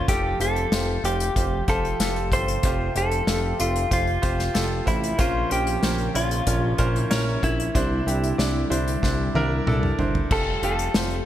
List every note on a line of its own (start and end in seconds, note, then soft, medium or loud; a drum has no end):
0.00 10.27 C3 medium
0.00 0.10 C#4 medium
0.00 0.10 A#4 medium
0.00 0.10 C5 medium
0.00 0.10 C#5 loud
0.08 0.34 F1 loud
0.08 5.15 F3 medium
0.08 5.15 A3 medium
0.08 0.35 F4 medium
0.08 0.35 G4 medium
0.08 5.15 G4 medium
0.08 0.41 G4 medium
0.08 0.35 A4 medium
0.08 kick loud
0.08 closed hi-hat medium
0.40 0.66 F1 medium
0.40 0.67 F4 medium
0.40 0.67 G4 medium
0.40 1.05 A4 medium
0.40 0.67 C5 medium
0.40 closed hi-hat medium
0.56 closed hi-hat soft
0.72 0.98 F1 medium
0.72 0.99 F4 medium
0.72 0.99 G4 medium
0.72 0.99 C5 medium
0.72 snare medium
0.72 closed hi-hat medium
1.04 1.30 F1 loud
1.04 1.31 F4 medium
1.04 1.31 G4 medium
1.04 1.65 G4 medium
1.04 1.31 C5 medium
1.04 closed hi-hat medium
1.20 closed hi-hat soft
1.35 1.62 F1 loud
1.35 1.62 F4 medium
1.35 1.63 G4 medium
1.35 1.63 C5 medium
1.35 kick medium
1.35 closed hi-hat medium
1.68 1.94 F1 medium
1.68 1.95 F4 medium
1.68 1.95 G4 medium
1.68 2.29 A4 medium
1.68 1.95 C5 medium
1.68 kick medium
1.68 closed hi-hat medium
1.85 closed hi-hat soft
2.00 2.33 F1 medium
2.00 2.27 F4 medium
2.00 2.27 G4 medium
2.00 2.27 A4 medium
2.00 snare medium
2.00 closed hi-hat medium
2.16 closed hi-hat soft
2.32 2.58 G1 medium
2.32 2.59 F4 medium
2.32 2.59 G4 medium
2.32 2.59 A4 medium
2.32 2.92 C5 medium
2.32 kick medium
2.32 closed hi-hat medium
2.48 closed hi-hat soft
2.63 2.90 F1 loud
2.63 2.91 F4 medium
2.63 2.91 G4 medium
2.63 2.91 C5 medium
2.63 kick loud
2.63 closed hi-hat medium
2.96 3.22 F1 loud
2.96 3.23 F4 medium
2.96 3.23 G4 medium
2.96 3.60 A4 medium
2.96 3.23 C5 medium
2.96 closed hi-hat medium
3.12 closed hi-hat soft
3.27 3.54 F1 medium
3.27 3.55 F4 medium
3.27 3.55 G4 medium
3.27 3.55 A4 medium
3.27 snare medium
3.27 closed hi-hat medium
3.59 3.86 F1 medium
3.59 3.86 F4 medium
3.59 3.90 F4 medium
3.59 3.86 G4 medium
3.59 3.86 A4 medium
3.59 closed hi-hat medium
3.76 closed hi-hat soft
3.91 4.18 F1 loud
3.91 4.18 F4 medium
3.91 4.87 F4 medium
3.91 4.18 G4 medium
3.91 4.18 C5 medium
3.91 kick medium
3.91 closed hi-hat medium
4.07 closed hi-hat soft
4.22 4.50 F1 medium
4.22 4.50 F4 medium
4.22 4.50 G4 medium
4.22 4.50 C5 medium
4.22 kick medium
4.22 closed hi-hat medium
4.39 snare soft
4.39 closed hi-hat soft
4.54 4.82 F1 loud
4.54 4.82 F4 medium
4.54 4.82 G4 medium
4.54 4.82 A4 medium
4.54 snare medium
4.54 closed hi-hat medium
4.86 5.13 A1 medium
4.86 5.17 E4 medium
4.86 5.13 F4 medium
4.86 5.14 G4 medium
4.86 5.13 C5 medium
4.86 kick medium
4.86 closed hi-hat medium
5.04 closed hi-hat soft
5.18 5.45 A#1 medium
5.18 6.11 A#2 medium
5.18 7.72 C#3 medium
5.18 7.73 F3 medium
5.18 7.72 A#3 medium
5.18 5.46 C#4 medium
5.18 5.52 F4 medium
5.18 5.46 A#4 medium
5.18 5.46 C5 medium
5.18 kick medium
5.18 closed hi-hat medium
5.50 5.78 A#1 medium
5.50 5.77 C#4 medium
5.50 6.12 G4 medium
5.50 5.77 A#4 medium
5.50 5.78 C5 medium
5.50 closed hi-hat medium
5.67 closed hi-hat soft
5.83 6.09 A#1 medium
5.83 6.10 C#4 medium
5.83 6.10 A#4 medium
5.83 6.10 C5 medium
5.83 snare medium
5.83 closed hi-hat medium
5.98 closed hi-hat soft
6.14 6.41 A#1 loud
6.14 6.42 C#4 medium
6.14 6.97 F4 medium
6.14 6.42 A#4 medium
6.14 6.42 C#5 medium
6.14 closed hi-hat medium
6.31 closed hi-hat soft
6.47 6.74 A#1 loud
6.47 6.74 C#4 medium
6.47 6.74 A#4 medium
6.47 6.74 C#5 medium
6.47 kick medium
6.47 closed hi-hat medium
6.78 7.05 A#1 loud
6.78 7.06 C#4 medium
6.78 7.06 A#4 medium
6.78 7.06 C5 medium
6.78 kick medium
6.78 closed hi-hat medium
6.96 7.39 E4 medium
6.96 closed hi-hat soft
7.11 7.37 A#1 medium
7.11 7.38 C#4 medium
7.11 7.38 A#4 medium
7.11 7.38 C#5 loud
7.11 snare medium
7.11 closed hi-hat medium
7.42 7.69 A#1 medium
7.42 7.70 C#4 medium
7.42 9.95 E4 medium
7.42 7.70 A#4 medium
7.42 kick medium
7.42 closed hi-hat medium
7.60 closed hi-hat soft
7.74 8.01 C2 medium
7.74 8.67 C3 medium
7.74 10.28 D3 medium
7.74 10.28 G3 medium
7.74 8.02 D4 medium
7.74 8.02 E4 medium
7.74 10.28 E4 medium
7.74 8.02 C5 medium
7.74 kick loud
7.74 closed hi-hat medium
8.06 8.33 C2 medium
8.06 8.34 D4 medium
8.06 8.34 E4 medium
8.06 8.34 G4 medium
8.06 closed hi-hat medium
8.24 closed hi-hat soft
8.38 8.65 C2 medium
8.38 8.65 D4 medium
8.38 8.66 E4 medium
8.38 8.65 D5 medium
8.38 snare medium
8.38 closed hi-hat medium
8.70 8.97 C2 loud
8.70 8.98 D4 medium
8.70 8.98 E4 medium
8.70 8.97 C5 medium
8.70 closed hi-hat medium
8.88 closed hi-hat soft
9.02 9.29 C2 loud
9.02 9.30 D4 medium
9.02 9.30 E4 medium
9.02 9.30 C5 medium
9.02 kick medium
9.02 snare soft
9.34 9.61 C2 loud
9.34 9.62 D4 medium
9.34 9.62 E4 medium
9.34 9.62 A#4 loud
9.34 high tom medium
9.66 9.93 C2 medium
9.66 9.94 D4 medium
9.66 9.94 E4 medium
9.66 9.94 A4 medium
9.66 mid tom medium
9.83 mid tom medium
9.99 10.25 G1 medium
9.99 10.26 D4 medium
9.99 10.26 E4 medium
9.99 10.26 C5 medium
9.99 floor tom medium
10.15 floor tom medium
10.31 10.57 F1 loud
10.31 11.25 C3 medium
10.31 11.25 G3 medium
10.31 11.25 A3 medium
10.31 11.25 F4 medium
10.31 10.58 F4 medium
10.31 10.58 G4 medium
10.31 10.58 A4 medium
10.31 10.64 A4 medium
10.31 kick loud
10.31 crash medium
10.62 10.89 F1 medium
10.62 10.90 F4 medium
10.62 10.90 G4 medium
10.62 10.90 A4 medium
10.62 11.25 A4 medium
10.62 closed hi-hat medium
10.79 closed hi-hat soft
10.94 11.21 F1 medium
10.94 11.22 F4 medium
10.94 11.22 G4 medium
10.94 11.22 C5 medium
10.94 snare medium
10.94 closed hi-hat medium
11.10 closed hi-hat soft